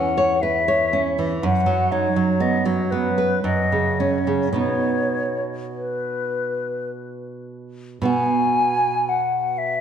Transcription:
Already playing: nylon-string guitar E2 C#4, flute F#5
0.18 nylon-string guitar C#5
0.42 nylon-string guitar B4, flute E5
0.68 nylon-string guitar C#5
0.93 nylon-string guitar C#4
1.19 nylon-string guitar E3
1.42 nylon-string guitar F#2, flute F#5
1.66 nylon-string guitar F#3
1.92 nylon-string guitar D#4, flute C#5
2.16 nylon-string guitar F#3
2.40 nylon-string guitar B3, flute D#5
2.65 nylon-string guitar F#3, flute C#5
2.91 nylon-string guitar B3, flute B4
3.18 nylon-string guitar B4
3.44 nylon-string guitar F#2, flute D#5
3.72 nylon-string guitar C#3
4.00 nylon-string guitar C#4, flute C#5
4.27 nylon-string guitar C#3
4.53 nylon-string guitar B2 B3 D#4
4.58 flute C#5
5.76 flute B4
8.02 nylon-string guitar B2 B3 F#4
8.06 flute G#5
9.09 flute F#5
9.58 flute E5

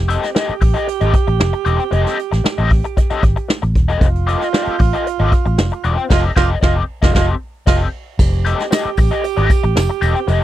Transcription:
Already playing: fingered electric bass F1, tenor saxophone G4
0.08 overdriven electric guitar C4 G4 A4 D#5, closed hi-hat
0.23 snare, closed hi-hat
0.35 overdriven electric guitar C4 G4 A4 D#5, snare
0.48 muted fingered electric bass stroke, closed hi-hat
0.61 fingered electric bass A1, muted overdriven electric guitar stroke, kick, open hi-hat
0.74 overdriven electric guitar C4 G4 A4 D#5, closed hi-hat
0.87 muted overdriven electric guitar stroke, closed hi-hat
1.01 fingered electric bass G#1, overdriven electric guitar C4 G4 A4 D#5, closed hi-hat
1.14 muted overdriven electric guitar stroke, kick, closed hi-hat
1.27 fingered electric bass A1, muted overdriven electric guitar stroke, closed hi-hat
1.40 fingered electric bass F1, muted overdriven electric guitar stroke, snare
1.53 muted overdriven electric guitar stroke, closed hi-hat
1.65 fingered electric bass E1, overdriven electric guitar C4 G4 A4 D#5, closed hi-hat
1.79 muted overdriven electric guitar stroke, closed hi-hat
1.91 fingered electric bass F1, overdriven electric guitar C4 G4 A4 D#5, closed hi-hat
2.06 snare, closed hi-hat
2.19 closed hi-hat
2.32 fingered electric bass A1, muted overdriven electric guitar stroke, snare, closed hi-hat
2.44 muted overdriven electric guitar stroke, snare
2.58 fingered electric bass A1, overdriven electric guitar C4 G4 A4 D#5, closed hi-hat
2.70 muted overdriven electric guitar stroke, kick, open hi-hat
2.84 muted overdriven electric guitar stroke, closed hi-hat
2.97 muted overdriven electric guitar stroke, kick, closed hi-hat
3.10 overdriven electric guitar C4 G4 A4 D#5, muted fingered electric bass stroke, closed hi-hat
3.23 fingered electric bass G#1, muted overdriven electric guitar stroke, kick, closed hi-hat
3.36 muted overdriven electric guitar stroke, closed hi-hat
3.48 muted overdriven electric guitar stroke, snare
3.62 fingered electric bass A1, muted overdriven electric guitar stroke, closed hi-hat
3.75 fingered electric bass D#1, kick, closed hi-hat
3.88 fingered electric bass E1, overdriven electric guitar C4 G4 A4 D#5, closed hi-hat
4.01 fingered electric bass F1, tenor saxophone F4, kick, closed hi-hat
4.15 closed hi-hat
4.27 overdriven electric guitar C4 G4 A4 D#5, closed hi-hat
4.41 snare, closed hi-hat
4.53 overdriven electric guitar C4 G4 A4 D#5, snare
4.66 muted fingered electric bass stroke, closed hi-hat
4.79 fingered electric bass A1, muted overdriven electric guitar stroke, kick, open hi-hat
4.93 overdriven electric guitar C4 G4 A4 D#5, closed hi-hat
5.06 muted overdriven electric guitar stroke, closed hi-hat
5.19 fingered electric bass G#1, overdriven electric guitar C4 G4 A4 D#5, closed hi-hat
5.32 muted overdriven electric guitar stroke, kick, closed hi-hat
5.45 fingered electric bass A1, muted overdriven electric guitar stroke, closed hi-hat
5.58 fingered electric bass F1, muted overdriven electric guitar stroke, snare
5.71 muted overdriven electric guitar stroke, closed hi-hat
5.84 fingered electric bass E1, overdriven electric guitar C4 G4 A4 D#5, closed hi-hat
5.98 muted overdriven electric guitar stroke, closed hi-hat
6.10 fingered electric bass F1, overdriven electric guitar C4 G4 A4 D#5, tenor saxophone F4, kick, snare, crash
6.36 fingered electric bass F1, overdriven electric guitar C4 G4 A4 D#5, tenor saxophone F4, kick, snare
6.62 fingered electric bass F1, overdriven electric guitar C4 G4 A4 D#5, tenor saxophone F4, kick, snare
7.02 fingered electric bass F1, overdriven electric guitar C4 G4 A4 D#5, tenor saxophone F4, kick, snare
7.14 fingered electric bass F1, overdriven electric guitar C4 G4 A4 D#5, tenor saxophone F4, kick, snare
7.67 fingered electric bass F1, overdriven electric guitar C4 G4 A4 D#5, tenor saxophone F4, kick, snare, crash
8.19 fingered electric bass F1, tenor saxophone G4, kick, crash, tambourine
8.33 closed hi-hat
8.45 overdriven electric guitar C4 G4 A4 D#5, closed hi-hat
8.59 snare, closed hi-hat
8.71 overdriven electric guitar C4 G4 A4 D#5, snare, tambourine
8.85 muted fingered electric bass stroke, closed hi-hat
8.97 fingered electric bass A1, muted overdriven electric guitar stroke, kick, open hi-hat, tambourine
9.11 overdriven electric guitar C4 G4 A4 D#5, closed hi-hat
9.23 muted overdriven electric guitar stroke, closed hi-hat, tambourine
9.37 fingered electric bass G#1, overdriven electric guitar C4 G4 A4 D#5, closed hi-hat
9.50 muted overdriven electric guitar stroke, kick, closed hi-hat, tambourine
9.63 fingered electric bass A1, muted overdriven electric guitar stroke, closed hi-hat
9.76 fingered electric bass F1, muted overdriven electric guitar stroke, snare, tambourine
9.89 muted overdriven electric guitar stroke, closed hi-hat
10.01 fingered electric bass E1, overdriven electric guitar C4 G4 A4 D#5, closed hi-hat, tambourine
10.15 muted overdriven electric guitar stroke, closed hi-hat
10.28 fingered electric bass F1, overdriven electric guitar C4 G4 A4 D#5, closed hi-hat, tambourine

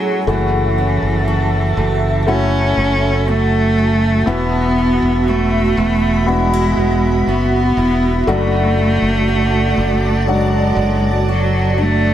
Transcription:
Already playing: cello F#3, grand piano G#3 C#4 F#4, steel-string acoustic guitar C#4 E4 G#4, ambient pad G#4 C#5 F#5
0.27 fingered electric bass F#1, steel-string acoustic guitar F#2 F#4, cello E3, grand piano A3 E4 F#4, ambient pad F#4 E5 A5
0.78 steel-string acoustic guitar C#4
1.02 fingered electric bass F#1
1.28 steel-string acoustic guitar F#4
1.77 fingered electric bass F#1, steel-string acoustic guitar A3
2.27 grand piano A3 E4 F#4, steel-string acoustic guitar C#4, cello C#4
2.77 fingered electric bass F#1, steel-string acoustic guitar A3
3.28 cello A3, steel-string acoustic guitar F#4
3.78 steel-string acoustic guitar C#4
4.26 fingered electric bass E1, grand piano E3 B3 E4 F#4, steel-string acoustic guitar E3 F#4, cello B3, ambient pad B5
4.78 steel-string acoustic guitar E4
5.02 fingered electric bass E1
5.28 cello A3, steel-string acoustic guitar F#4
5.77 fingered electric bass E1, steel-string acoustic guitar B3
6.26 cello G#3, grand piano B3 E4 F#4, steel-string acoustic guitar D4
6.53 steel-string acoustic guitar E4
6.77 fingered electric bass E1, steel-string acoustic guitar B3
7.27 fingered electric bass F#1, cello B3, steel-string acoustic guitar F#4
7.77 fingered electric bass E1, steel-string acoustic guitar E4
8.27 fingered electric bass F#1, steel-string acoustic guitar F#3 F#4, grand piano A3 D4 F#4, cello A3, ambient pad D5 A5
8.78 steel-string acoustic guitar D4
9.02 fingered electric bass F#1
9.28 steel-string acoustic guitar F#4
9.77 fingered electric bass F#1
10.27 grand piano F#3 D4 F#4, cello G#3, steel-string acoustic guitar D4
10.76 fingered electric bass F#1
11.28 cello F#3, steel-string acoustic guitar F#4
11.78 cello A3, steel-string acoustic guitar D4

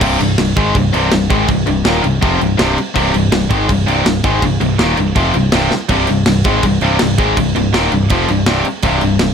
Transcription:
0.00 picked electric bass C1, distorted electric guitar C2 G2 C3, kick, crash
0.19 picked electric bass C1, distorted electric guitar C2 G2, crash
0.38 picked electric bass C1, distorted electric guitar C2 G2, snare, crash
0.57 picked electric bass G#1, distorted electric guitar G#2 D#3 G#3, kick, crash
0.75 picked electric bass C1, distorted electric guitar C2 G2, kick, crash
0.93 picked electric bass C1, distorted electric guitar C2 G2 C3, crash
1.11 picked electric bass C1, distorted electric guitar C2 G2, snare, crash
1.30 picked electric bass G#1, distorted electric guitar G#2 D#3 G#3, kick, crash
1.48 picked electric bass C1, distorted electric guitar C2 G2, kick, crash
1.66 picked electric bass C1, distorted electric guitar C2 G2, crash
1.84 picked electric bass D#1, distorted electric guitar D#2 A#2 D#3, snare, crash
2.03 picked electric bass C1, distorted electric guitar C2 G2, crash
2.21 picked electric bass F1, distorted electric guitar F2 C3 F3, kick, crash
2.40 picked electric bass C1, distorted electric guitar C2 G2, crash
2.57 picked electric bass C1, distorted electric guitar C2 G2 C3, snare, crash
2.77 muted distorted electric guitar stroke, muted picked electric bass stroke, crash
2.94 picked electric bass C1, distorted electric guitar C2 G2 C3, kick, crash
3.13 picked electric bass C1, distorted electric guitar C2 G2, crash
3.32 picked electric bass C1, distorted electric guitar C2 G2, snare, crash
3.50 picked electric bass G#1, distorted electric guitar G#2 D#3 G#3, kick, crash
3.69 picked electric bass C1, distorted electric guitar C2 G2, kick, crash
3.87 picked electric bass C1, distorted electric guitar C2 G2 C3, crash
4.05 picked electric bass C1, distorted electric guitar C2 G2, snare, crash
4.24 picked electric bass G#1, distorted electric guitar G#2 D#3 G#3, kick, crash
4.42 picked electric bass C1, distorted electric guitar C2 G2, kick, crash
4.60 picked electric bass C1, distorted electric guitar C2 G2, crash
4.79 picked electric bass D#1, distorted electric guitar D#2 A#2 D#3, snare, crash
4.97 picked electric bass C1, distorted electric guitar C2 G2, crash
5.16 picked electric bass F1, distorted electric guitar F2 C3 F3, kick, crash
5.34 picked electric bass C1, distorted electric guitar C2 G2, crash
5.52 picked electric bass C1, distorted electric guitar C2 G2 C3, snare, crash
5.71 muted picked electric bass stroke, muted distorted electric guitar stroke, snare
5.89 picked electric bass C1, distorted electric guitar C2 G2 C3, kick, crash
6.07 picked electric bass C1, distorted electric guitar C2 G2, crash
6.26 picked electric bass C1, distorted electric guitar C2 G2, snare, crash
6.44 picked electric bass G#1, distorted electric guitar G#2 D#3 G#3, kick, crash
6.63 picked electric bass C1, distorted electric guitar C2 G2, kick, crash
6.81 picked electric bass C1, distorted electric guitar C2 G2 C3, crash
6.99 picked electric bass C1, distorted electric guitar C2 G2, snare, crash
7.18 picked electric bass G#1, distorted electric guitar G#2 D#3 G#3, kick, crash
7.37 picked electric bass C1, distorted electric guitar C2 G2, kick, crash
7.55 picked electric bass C1, distorted electric guitar C2 G2, crash
7.73 picked electric bass D#1, distorted electric guitar D#2 A#2 D#3, snare, crash
7.92 picked electric bass C1, distorted electric guitar C2 G2, crash
8.09 picked electric bass F1, distorted electric guitar F2 C3 F3, kick, crash
8.28 picked electric bass C1, distorted electric guitar C2 G2, crash
8.46 picked electric bass C1, distorted electric guitar C2 G2 C3, snare, crash
8.65 muted picked electric bass stroke, muted distorted electric guitar stroke, crash
8.82 picked electric bass C1, distorted electric guitar C2 G2 C3, kick, crash
9.01 picked electric bass C1, distorted electric guitar C2 G2, crash
9.19 picked electric bass C1, distorted electric guitar C2 G2, snare, crash

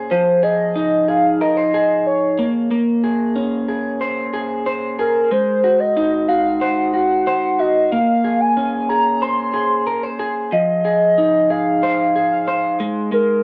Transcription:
Already playing: clean electric guitar A#3 C#4 G#4 C5
0.10 clean electric guitar F3, soft synth lead C5
0.43 clean electric guitar G#4, soft synth lead D#5
0.76 clean electric guitar D#4
1.08 clean electric guitar G#4, soft synth lead F5
1.41 clean electric guitar A#4, soft synth lead D#5
1.57 clean electric guitar C5
1.74 clean electric guitar G#4
2.07 soft synth lead C#5
2.39 clean electric guitar A#3
2.71 clean electric guitar A#3
3.04 clean electric guitar G#4
3.36 clean electric guitar C#4
3.69 clean electric guitar G#4
4.01 clean electric guitar C5
4.34 clean electric guitar G#4
4.66 clean electric guitar C5
4.99 clean electric guitar G#4, soft synth lead A#4
5.31 clean electric guitar G#3, soft synth lead C5
5.64 clean electric guitar F#4
5.80 soft synth lead D#5
5.97 clean electric guitar D#4
6.28 clean electric guitar F#4, soft synth lead F5
6.60 clean electric guitar C5, soft synth lead F#5
6.94 clean electric guitar F#4
7.27 clean electric guitar C5
7.60 clean electric guitar F#4, soft synth lead D#5
7.92 clean electric guitar A#3, soft synth lead F5
8.24 clean electric guitar G#4
8.40 soft synth lead G#5
8.57 clean electric guitar C#4
8.89 clean electric guitar G#4, soft synth lead A#5
9.22 clean electric guitar C5, soft synth lead C6
9.54 clean electric guitar G#4
9.87 clean electric guitar A#4
10.03 clean electric guitar C5
10.19 clean electric guitar G#4
10.52 clean electric guitar F3, soft synth lead D#5
10.85 clean electric guitar G#4
11.18 clean electric guitar D#4
11.50 clean electric guitar G#4, soft synth lead F5
11.83 clean electric guitar C5
12.15 clean electric guitar G#4
12.32 soft synth lead F5
12.47 clean electric guitar C5
12.80 clean electric guitar G#3
13.12 clean electric guitar G#3, soft synth lead A#4

